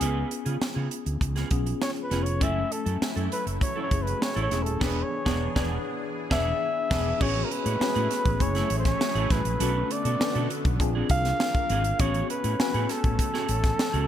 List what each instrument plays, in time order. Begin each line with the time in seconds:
Already playing: flugelhorn G#4
0.00 fretless electric bass C#2, tine electric piano B3 C#4 F4 G#4, clean electric guitar B3 F4 B4, closed hi-hat
0.31 muted clean electric guitar stroke, closed hi-hat
0.45 fretless electric bass C#3, clean electric guitar B3 F4 G#4, closed hi-hat
0.60 muted clean electric guitar stroke, muted fretless electric bass stroke, snare
0.75 fretless electric bass C#3, clean electric guitar B3 F4 G#4
0.90 muted clean electric guitar stroke, closed hi-hat
1.06 fretless electric bass D2, muted clean electric guitar stroke, closed hi-hat
1.21 fretless electric bass C#2, muted clean electric guitar stroke, kick, closed hi-hat
1.36 clean electric guitar B3 F4 G#4, snare, closed hi-hat
1.50 fretless electric bass B1, tine electric piano B3 C#4 F4 G#4, muted clean electric guitar stroke, kick, closed hi-hat
1.66 muted clean electric guitar stroke, closed hi-hat
1.81 flugelhorn C#5, muted clean electric guitar stroke, snare
1.96 muted clean electric guitar stroke, closed hi-hat
2.03 flugelhorn B4
2.10 fretless electric bass F1, clean electric guitar B3 F4 G#4, tine electric piano B3 C#4 F4 B4, snare, closed hi-hat
2.23 flugelhorn C#5, closed hi-hat
2.40 fretless electric bass F#1, analog synth pad F#3 A3 E4, tine electric piano A3 C#4 E4 G#5, clean electric guitar C#4 E4 A4, flugelhorn E5, kick, closed hi-hat
2.71 flugelhorn A4, muted clean electric guitar stroke, closed hi-hat
2.86 fretless electric bass F#2, clean electric guitar C#4 E4 A4, closed hi-hat
3.01 muted clean electric guitar stroke, muted fretless electric bass stroke, snare
3.16 fretless electric bass F#2, clean electric guitar C#4 E4 A4, closed hi-hat
3.31 flugelhorn B4, muted clean electric guitar stroke, closed hi-hat
3.46 fretless electric bass F#1, muted clean electric guitar stroke, closed hi-hat
3.61 flugelhorn C#5, muted clean electric guitar stroke, kick, closed hi-hat
3.76 clean electric guitar C#4 E4 A4
3.83 flugelhorn C#5
3.91 fretless electric bass F#1, tine electric piano A3 C#4 E4 G#4, kick, closed hi-hat
4.02 flugelhorn B4, muted clean electric guitar stroke
4.07 closed hi-hat
4.21 flugelhorn C#5, muted clean electric guitar stroke, snare
4.35 fretless electric bass A1, clean electric guitar C#4 E4 A4, closed hi-hat
4.42 flugelhorn C#5
4.50 fretless electric bass E1, tine electric piano A3 C#4 E4 G#4, clean electric guitar C#4 E4 A4, snare, closed hi-hat
4.63 fretless electric bass D#1, flugelhorn A4, muted clean electric guitar stroke, closed hi-hat
4.80 fretless electric bass E1, analog synth pad E3 D4 G#4, clean electric guitar B3 D4 B4, tine electric piano B3 D4 G#4, flugelhorn B4, kick, snare, crash
5.03 flugelhorn C#5
5.25 fretless electric bass E1, tine electric piano B3 D4 G#4, clean electric guitar B3 D4 G#4, kick, snare
5.55 fretless electric bass E1, tine electric piano B3 D4 G#4, clean electric guitar B3 D4 G#4, kick, snare
6.30 fretless electric bass E1, tine electric piano B3 D4 G#4, clean electric guitar B3 D4 G#4, flugelhorn E5, kick, snare
6.90 fretless electric bass E1, clean electric guitar B3 D4 G#4, tine electric piano B3 D4 G#4, kick, snare, crash
7.20 fretless electric bass A1, analog synth pad G#3 A3 C#4, tine electric piano B3 C#4 F#4 G#4, clean electric guitar C#4 F#4 G#4, flugelhorn C#5, kick, crash
7.44 flugelhorn A#4
7.50 flugelhorn B4, muted clean electric guitar stroke, closed hi-hat
7.65 fretless electric bass A2, clean electric guitar C#4 F#4 G#4, closed hi-hat
7.80 tine electric piano B3 C#4 F#4 G#4, muted clean electric guitar stroke, muted fretless electric bass stroke, snare
7.95 fretless electric bass A2, clean electric guitar C#4 F#4 G#4, closed hi-hat
8.10 muted clean electric guitar stroke, snare, closed hi-hat
8.25 fretless electric bass A1, muted clean electric guitar stroke, kick, closed hi-hat
8.40 fretless electric bass F#1, analog synth pad F#3 A3 E4 G#4, tine electric piano A3 C#4 E4 G#4, flugelhorn C#5, muted clean electric guitar stroke, kick, closed hi-hat
8.55 clean electric guitar A3 E4 G#4, snare, closed hi-hat
8.70 fretless electric bass A1, muted clean electric guitar stroke, closed hi-hat
8.79 flugelhorn C5
8.85 flugelhorn C#5, muted clean electric guitar stroke, kick, snare, closed hi-hat
9.01 muted clean electric guitar stroke, snare
9.15 fretless electric bass A1, clean electric guitar A3 E4 G#4, closed hi-hat
9.30 fretless electric bass A1, clean electric guitar A3 E4 G#4, flugelhorn B4, kick, snare, closed hi-hat
9.45 fretless electric bass A#1, muted clean electric guitar stroke, closed hi-hat
9.60 fretless electric bass B1, analog synth pad D3 A3 B3, tine electric piano C#4 D4 F#4 A4, clean electric guitar D4 F#4 B4, closed hi-hat
9.90 flugelhorn D5, muted clean electric guitar stroke, closed hi-hat
10.05 fretless electric bass B2, clean electric guitar D4 F#4 A4, closed hi-hat
10.19 tine electric piano B3 D4 F#4 A4, muted clean electric guitar stroke, muted fretless electric bass stroke, snare
10.35 fretless electric bass B2, clean electric guitar D4 F#4 A4, closed hi-hat
10.50 muted clean electric guitar stroke, closed hi-hat
10.65 fretless electric bass B1, muted clean electric guitar stroke, kick, closed hi-hat
10.79 fretless electric bass A#1, analog synth pad A#3, tine electric piano C4 D4 F4 G#4, muted clean electric guitar stroke, kick, closed hi-hat
10.95 clean electric guitar C4 D4 G#4
11.09 fretless electric bass C2, flugelhorn F5, kick, closed hi-hat
11.25 muted clean electric guitar stroke, snare, closed hi-hat
11.40 muted clean electric guitar stroke, snare
11.55 muted clean electric guitar stroke, kick, closed hi-hat
11.70 fretless electric bass G#1, clean electric guitar C4 D4 G#4, closed hi-hat
11.84 closed hi-hat
11.99 fretless electric bass A1, analog synth pad A3 C#4, tine electric piano B3 C#4 F#4 G#4, clean electric guitar C#4 F#4 G#4, flugelhorn C#5, kick, closed hi-hat
12.14 closed hi-hat
12.29 flugelhorn B4, muted clean electric guitar stroke, closed hi-hat
12.44 fretless electric bass A2, clean electric guitar C#4 F#4 G#4, closed hi-hat
12.59 tine electric piano B3 C#4 F#4 G#5, flugelhorn B4, muted clean electric guitar stroke, muted fretless electric bass stroke, snare
12.74 fretless electric bass A2, clean electric guitar C#4 F#4 G#4, closed hi-hat
12.89 flugelhorn A4, muted clean electric guitar stroke, snare, closed hi-hat
13.04 fretless electric bass A1, muted clean electric guitar stroke, kick, closed hi-hat
13.19 muted clean electric guitar stroke, kick, closed hi-hat
13.34 clean electric guitar C#4 F#4 G#4, snare
13.49 fretless electric bass A1, muted clean electric guitar stroke, closed hi-hat
13.64 muted clean electric guitar stroke, kick, snare, closed hi-hat
13.79 muted clean electric guitar stroke, snare
13.93 fretless electric bass C#2, clean electric guitar C#4 F#4 G#4, closed hi-hat